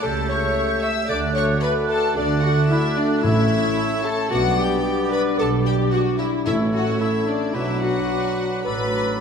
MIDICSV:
0, 0, Header, 1, 12, 480
1, 0, Start_track
1, 0, Key_signature, 2, "major"
1, 0, Tempo, 537634
1, 21, Time_signature, 4, 2, 24, 8
1, 6741, Tempo, 558140
1, 8164, End_track
2, 0, Start_track
2, 0, Title_t, "Flute section"
2, 0, Program_c, 0, 73
2, 25, Note_on_c, 0, 91, 81
2, 982, Note_off_c, 0, 91, 0
2, 987, Note_on_c, 0, 90, 75
2, 1924, Note_off_c, 0, 90, 0
2, 1935, Note_on_c, 0, 90, 80
2, 2874, Note_off_c, 0, 90, 0
2, 2893, Note_on_c, 0, 88, 77
2, 3648, Note_off_c, 0, 88, 0
2, 3856, Note_on_c, 0, 86, 84
2, 5742, Note_off_c, 0, 86, 0
2, 5773, Note_on_c, 0, 88, 74
2, 6240, Note_off_c, 0, 88, 0
2, 6251, Note_on_c, 0, 88, 67
2, 6726, Note_off_c, 0, 88, 0
2, 6737, Note_on_c, 0, 86, 64
2, 7684, Note_off_c, 0, 86, 0
2, 7694, Note_on_c, 0, 86, 62
2, 8164, Note_off_c, 0, 86, 0
2, 8164, End_track
3, 0, Start_track
3, 0, Title_t, "Violin section"
3, 0, Program_c, 1, 48
3, 20, Note_on_c, 1, 81, 97
3, 261, Note_off_c, 1, 81, 0
3, 262, Note_on_c, 1, 85, 85
3, 742, Note_off_c, 1, 85, 0
3, 747, Note_on_c, 1, 88, 96
3, 979, Note_on_c, 1, 86, 96
3, 983, Note_off_c, 1, 88, 0
3, 1050, Note_off_c, 1, 86, 0
3, 1221, Note_on_c, 1, 85, 102
3, 1292, Note_off_c, 1, 85, 0
3, 1456, Note_on_c, 1, 83, 94
3, 1527, Note_off_c, 1, 83, 0
3, 1696, Note_on_c, 1, 81, 97
3, 1927, Note_off_c, 1, 81, 0
3, 1929, Note_on_c, 1, 74, 92
3, 2163, Note_off_c, 1, 74, 0
3, 2165, Note_on_c, 1, 78, 94
3, 2398, Note_on_c, 1, 76, 93
3, 2406, Note_off_c, 1, 78, 0
3, 2639, Note_off_c, 1, 76, 0
3, 2650, Note_on_c, 1, 74, 90
3, 2886, Note_on_c, 1, 76, 106
3, 2891, Note_off_c, 1, 74, 0
3, 3597, Note_off_c, 1, 76, 0
3, 3610, Note_on_c, 1, 81, 94
3, 3852, Note_off_c, 1, 81, 0
3, 3859, Note_on_c, 1, 78, 106
3, 4091, Note_off_c, 1, 78, 0
3, 4100, Note_on_c, 1, 79, 85
3, 4576, Note_off_c, 1, 79, 0
3, 4576, Note_on_c, 1, 83, 96
3, 4647, Note_off_c, 1, 83, 0
3, 4819, Note_on_c, 1, 81, 96
3, 4890, Note_off_c, 1, 81, 0
3, 5056, Note_on_c, 1, 79, 96
3, 5128, Note_off_c, 1, 79, 0
3, 5292, Note_on_c, 1, 78, 82
3, 5363, Note_off_c, 1, 78, 0
3, 5524, Note_on_c, 1, 76, 82
3, 5595, Note_off_c, 1, 76, 0
3, 5772, Note_on_c, 1, 76, 98
3, 5843, Note_off_c, 1, 76, 0
3, 6016, Note_on_c, 1, 78, 86
3, 6252, Note_off_c, 1, 78, 0
3, 6263, Note_on_c, 1, 76, 84
3, 6496, Note_off_c, 1, 76, 0
3, 6500, Note_on_c, 1, 74, 77
3, 6737, Note_on_c, 1, 76, 83
3, 6741, Note_off_c, 1, 74, 0
3, 6973, Note_off_c, 1, 76, 0
3, 6973, Note_on_c, 1, 78, 92
3, 7678, Note_off_c, 1, 78, 0
3, 7694, Note_on_c, 1, 83, 94
3, 8164, Note_off_c, 1, 83, 0
3, 8164, End_track
4, 0, Start_track
4, 0, Title_t, "Oboe"
4, 0, Program_c, 2, 68
4, 28, Note_on_c, 2, 76, 68
4, 948, Note_off_c, 2, 76, 0
4, 982, Note_on_c, 2, 74, 69
4, 1911, Note_off_c, 2, 74, 0
4, 1924, Note_on_c, 2, 74, 71
4, 2884, Note_on_c, 2, 73, 75
4, 2897, Note_off_c, 2, 74, 0
4, 3842, Note_off_c, 2, 73, 0
4, 3847, Note_on_c, 2, 74, 77
4, 5492, Note_off_c, 2, 74, 0
4, 5771, Note_on_c, 2, 73, 60
4, 6221, Note_off_c, 2, 73, 0
4, 6257, Note_on_c, 2, 73, 69
4, 6745, Note_on_c, 2, 71, 65
4, 6758, Note_off_c, 2, 73, 0
4, 7686, Note_off_c, 2, 71, 0
4, 7691, Note_on_c, 2, 69, 55
4, 8164, Note_off_c, 2, 69, 0
4, 8164, End_track
5, 0, Start_track
5, 0, Title_t, "Clarinet"
5, 0, Program_c, 3, 71
5, 20, Note_on_c, 3, 69, 84
5, 254, Note_off_c, 3, 69, 0
5, 259, Note_on_c, 3, 73, 73
5, 731, Note_off_c, 3, 73, 0
5, 740, Note_on_c, 3, 76, 88
5, 847, Note_off_c, 3, 76, 0
5, 974, Note_on_c, 3, 74, 79
5, 1082, Note_off_c, 3, 74, 0
5, 1212, Note_on_c, 3, 73, 77
5, 1446, Note_off_c, 3, 73, 0
5, 1450, Note_on_c, 3, 71, 83
5, 1557, Note_off_c, 3, 71, 0
5, 1692, Note_on_c, 3, 69, 81
5, 1934, Note_on_c, 3, 62, 82
5, 1947, Note_off_c, 3, 69, 0
5, 2164, Note_off_c, 3, 62, 0
5, 2169, Note_on_c, 3, 66, 73
5, 2277, Note_off_c, 3, 66, 0
5, 2417, Note_on_c, 3, 64, 81
5, 2649, Note_off_c, 3, 64, 0
5, 2658, Note_on_c, 3, 62, 85
5, 2889, Note_on_c, 3, 64, 86
5, 2903, Note_off_c, 3, 62, 0
5, 3608, Note_off_c, 3, 64, 0
5, 3613, Note_on_c, 3, 69, 80
5, 3840, Note_off_c, 3, 69, 0
5, 3846, Note_on_c, 3, 66, 85
5, 3955, Note_off_c, 3, 66, 0
5, 4089, Note_on_c, 3, 67, 65
5, 4561, Note_off_c, 3, 67, 0
5, 4572, Note_on_c, 3, 71, 92
5, 4809, Note_off_c, 3, 71, 0
5, 4813, Note_on_c, 3, 69, 83
5, 4922, Note_off_c, 3, 69, 0
5, 5048, Note_on_c, 3, 67, 76
5, 5288, Note_on_c, 3, 66, 83
5, 5302, Note_off_c, 3, 67, 0
5, 5518, Note_off_c, 3, 66, 0
5, 5524, Note_on_c, 3, 64, 76
5, 5766, Note_off_c, 3, 64, 0
5, 5774, Note_on_c, 3, 64, 77
5, 5883, Note_off_c, 3, 64, 0
5, 6013, Note_on_c, 3, 66, 64
5, 6122, Note_off_c, 3, 66, 0
5, 6250, Note_on_c, 3, 64, 76
5, 6496, Note_on_c, 3, 62, 72
5, 6509, Note_off_c, 3, 64, 0
5, 6727, Note_on_c, 3, 64, 73
5, 6740, Note_off_c, 3, 62, 0
5, 6963, Note_off_c, 3, 64, 0
5, 6968, Note_on_c, 3, 66, 71
5, 7432, Note_off_c, 3, 66, 0
5, 7685, Note_on_c, 3, 71, 76
5, 8142, Note_off_c, 3, 71, 0
5, 8164, End_track
6, 0, Start_track
6, 0, Title_t, "Viola section"
6, 0, Program_c, 4, 48
6, 19, Note_on_c, 4, 69, 87
6, 260, Note_off_c, 4, 69, 0
6, 261, Note_on_c, 4, 73, 84
6, 740, Note_on_c, 4, 76, 82
6, 741, Note_off_c, 4, 73, 0
6, 979, Note_off_c, 4, 76, 0
6, 983, Note_on_c, 4, 74, 88
6, 1055, Note_off_c, 4, 74, 0
6, 1216, Note_on_c, 4, 73, 80
6, 1448, Note_off_c, 4, 73, 0
6, 1461, Note_on_c, 4, 71, 75
6, 1533, Note_off_c, 4, 71, 0
6, 1693, Note_on_c, 4, 69, 82
6, 1925, Note_off_c, 4, 69, 0
6, 1935, Note_on_c, 4, 62, 84
6, 2006, Note_off_c, 4, 62, 0
6, 2173, Note_on_c, 4, 66, 73
6, 2245, Note_off_c, 4, 66, 0
6, 2411, Note_on_c, 4, 64, 76
6, 2483, Note_off_c, 4, 64, 0
6, 2651, Note_on_c, 4, 62, 84
6, 2886, Note_off_c, 4, 62, 0
6, 2896, Note_on_c, 4, 64, 85
6, 3609, Note_on_c, 4, 69, 83
6, 3616, Note_off_c, 4, 64, 0
6, 3851, Note_off_c, 4, 69, 0
6, 3852, Note_on_c, 4, 66, 94
6, 3923, Note_off_c, 4, 66, 0
6, 4090, Note_on_c, 4, 67, 73
6, 4561, Note_off_c, 4, 67, 0
6, 4562, Note_on_c, 4, 71, 81
6, 4801, Note_on_c, 4, 69, 86
6, 4809, Note_off_c, 4, 71, 0
6, 5048, Note_on_c, 4, 67, 79
6, 5049, Note_off_c, 4, 69, 0
6, 5286, Note_on_c, 4, 66, 76
6, 5287, Note_off_c, 4, 67, 0
6, 5524, Note_on_c, 4, 64, 71
6, 5531, Note_off_c, 4, 66, 0
6, 5595, Note_off_c, 4, 64, 0
6, 5766, Note_on_c, 4, 64, 84
6, 5837, Note_off_c, 4, 64, 0
6, 6010, Note_on_c, 4, 66, 75
6, 6249, Note_off_c, 4, 66, 0
6, 6250, Note_on_c, 4, 64, 72
6, 6489, Note_off_c, 4, 64, 0
6, 6496, Note_on_c, 4, 62, 69
6, 6734, Note_off_c, 4, 62, 0
6, 6736, Note_on_c, 4, 64, 70
6, 6968, Note_off_c, 4, 64, 0
6, 6973, Note_on_c, 4, 66, 73
6, 7692, Note_off_c, 4, 66, 0
6, 7695, Note_on_c, 4, 71, 87
6, 8164, Note_off_c, 4, 71, 0
6, 8164, End_track
7, 0, Start_track
7, 0, Title_t, "Violin section"
7, 0, Program_c, 5, 48
7, 20, Note_on_c, 5, 69, 73
7, 91, Note_off_c, 5, 69, 0
7, 258, Note_on_c, 5, 73, 91
7, 730, Note_off_c, 5, 73, 0
7, 738, Note_on_c, 5, 76, 81
7, 974, Note_off_c, 5, 76, 0
7, 974, Note_on_c, 5, 74, 93
7, 1201, Note_on_c, 5, 73, 87
7, 1214, Note_off_c, 5, 74, 0
7, 1273, Note_off_c, 5, 73, 0
7, 1447, Note_on_c, 5, 71, 84
7, 1682, Note_off_c, 5, 71, 0
7, 1685, Note_on_c, 5, 69, 91
7, 1925, Note_on_c, 5, 62, 78
7, 1926, Note_off_c, 5, 69, 0
7, 2161, Note_on_c, 5, 66, 78
7, 2166, Note_off_c, 5, 62, 0
7, 2399, Note_off_c, 5, 66, 0
7, 2402, Note_on_c, 5, 64, 73
7, 2641, Note_off_c, 5, 64, 0
7, 2656, Note_on_c, 5, 62, 67
7, 2727, Note_off_c, 5, 62, 0
7, 2896, Note_on_c, 5, 64, 98
7, 3601, Note_off_c, 5, 64, 0
7, 3608, Note_on_c, 5, 69, 89
7, 3851, Note_off_c, 5, 69, 0
7, 3859, Note_on_c, 5, 66, 90
7, 4094, Note_on_c, 5, 67, 73
7, 4095, Note_off_c, 5, 66, 0
7, 4571, Note_on_c, 5, 71, 77
7, 4573, Note_off_c, 5, 67, 0
7, 4809, Note_on_c, 5, 69, 83
7, 4814, Note_off_c, 5, 71, 0
7, 4881, Note_off_c, 5, 69, 0
7, 5041, Note_on_c, 5, 67, 81
7, 5283, Note_off_c, 5, 67, 0
7, 5284, Note_on_c, 5, 66, 81
7, 5525, Note_off_c, 5, 66, 0
7, 5528, Note_on_c, 5, 64, 81
7, 5759, Note_off_c, 5, 64, 0
7, 5770, Note_on_c, 5, 64, 76
7, 6010, Note_off_c, 5, 64, 0
7, 6013, Note_on_c, 5, 66, 80
7, 6250, Note_off_c, 5, 66, 0
7, 6256, Note_on_c, 5, 64, 68
7, 6489, Note_on_c, 5, 62, 59
7, 6497, Note_off_c, 5, 64, 0
7, 6730, Note_off_c, 5, 62, 0
7, 6735, Note_on_c, 5, 64, 75
7, 6968, Note_off_c, 5, 64, 0
7, 6975, Note_on_c, 5, 66, 74
7, 7693, Note_off_c, 5, 66, 0
7, 7697, Note_on_c, 5, 71, 77
7, 8164, Note_off_c, 5, 71, 0
7, 8164, End_track
8, 0, Start_track
8, 0, Title_t, "French horn section"
8, 0, Program_c, 6, 60
8, 0, Note_on_c, 6, 57, 66
8, 31, Note_on_c, 6, 67, 65
8, 966, Note_off_c, 6, 67, 0
8, 983, Note_on_c, 6, 66, 68
8, 1783, Note_off_c, 6, 57, 0
8, 1935, Note_on_c, 6, 57, 75
8, 2891, Note_off_c, 6, 66, 0
8, 2892, Note_on_c, 6, 61, 71
8, 3820, Note_off_c, 6, 57, 0
8, 3855, Note_off_c, 6, 61, 0
8, 3859, Note_on_c, 6, 62, 78
8, 3863, Note_on_c, 6, 55, 73
8, 5744, Note_off_c, 6, 62, 0
8, 5746, Note_off_c, 6, 55, 0
8, 5785, Note_on_c, 6, 57, 72
8, 5786, Note_on_c, 6, 61, 71
8, 6724, Note_off_c, 6, 57, 0
8, 6725, Note_off_c, 6, 61, 0
8, 6741, Note_on_c, 6, 54, 64
8, 6741, Note_on_c, 6, 62, 64
8, 8132, Note_off_c, 6, 54, 0
8, 8132, Note_off_c, 6, 62, 0
8, 8164, End_track
9, 0, Start_track
9, 0, Title_t, "Bassoon"
9, 0, Program_c, 7, 70
9, 27, Note_on_c, 7, 57, 69
9, 947, Note_off_c, 7, 57, 0
9, 981, Note_on_c, 7, 57, 75
9, 1910, Note_off_c, 7, 57, 0
9, 1932, Note_on_c, 7, 57, 79
9, 2872, Note_off_c, 7, 57, 0
9, 2894, Note_on_c, 7, 57, 75
9, 3854, Note_on_c, 7, 59, 86
9, 3867, Note_off_c, 7, 57, 0
9, 5529, Note_off_c, 7, 59, 0
9, 5778, Note_on_c, 7, 57, 73
9, 6225, Note_off_c, 7, 57, 0
9, 6257, Note_on_c, 7, 57, 68
9, 6739, Note_on_c, 7, 54, 65
9, 6752, Note_off_c, 7, 57, 0
9, 7686, Note_off_c, 7, 54, 0
9, 7691, Note_on_c, 7, 54, 59
9, 8164, Note_off_c, 7, 54, 0
9, 8164, End_track
10, 0, Start_track
10, 0, Title_t, "Cello section"
10, 0, Program_c, 8, 48
10, 24, Note_on_c, 8, 49, 78
10, 423, Note_off_c, 8, 49, 0
10, 985, Note_on_c, 8, 50, 73
10, 1377, Note_off_c, 8, 50, 0
10, 1931, Note_on_c, 8, 50, 89
10, 2329, Note_off_c, 8, 50, 0
10, 2891, Note_on_c, 8, 45, 77
10, 3292, Note_off_c, 8, 45, 0
10, 3853, Note_on_c, 8, 47, 87
10, 4251, Note_off_c, 8, 47, 0
10, 4811, Note_on_c, 8, 47, 71
10, 5213, Note_off_c, 8, 47, 0
10, 5776, Note_on_c, 8, 45, 80
10, 6177, Note_off_c, 8, 45, 0
10, 6743, Note_on_c, 8, 47, 72
10, 7134, Note_off_c, 8, 47, 0
10, 7693, Note_on_c, 8, 45, 69
10, 8099, Note_off_c, 8, 45, 0
10, 8164, End_track
11, 0, Start_track
11, 0, Title_t, "Timpani"
11, 0, Program_c, 10, 47
11, 2894, Note_on_c, 10, 45, 85
11, 3579, Note_off_c, 10, 45, 0
11, 5773, Note_on_c, 10, 45, 86
11, 6460, Note_off_c, 10, 45, 0
11, 8164, End_track
12, 0, Start_track
12, 0, Title_t, "Double bass section"
12, 0, Program_c, 11, 48
12, 27, Note_on_c, 11, 37, 72
12, 424, Note_off_c, 11, 37, 0
12, 983, Note_on_c, 11, 38, 79
12, 1376, Note_off_c, 11, 38, 0
12, 1933, Note_on_c, 11, 38, 80
12, 2330, Note_off_c, 11, 38, 0
12, 2891, Note_on_c, 11, 33, 83
12, 3292, Note_off_c, 11, 33, 0
12, 3856, Note_on_c, 11, 35, 81
12, 4253, Note_off_c, 11, 35, 0
12, 4809, Note_on_c, 11, 35, 76
12, 5212, Note_off_c, 11, 35, 0
12, 5770, Note_on_c, 11, 33, 82
12, 6175, Note_off_c, 11, 33, 0
12, 6737, Note_on_c, 11, 35, 75
12, 7131, Note_off_c, 11, 35, 0
12, 7693, Note_on_c, 11, 33, 61
12, 8099, Note_off_c, 11, 33, 0
12, 8164, End_track
0, 0, End_of_file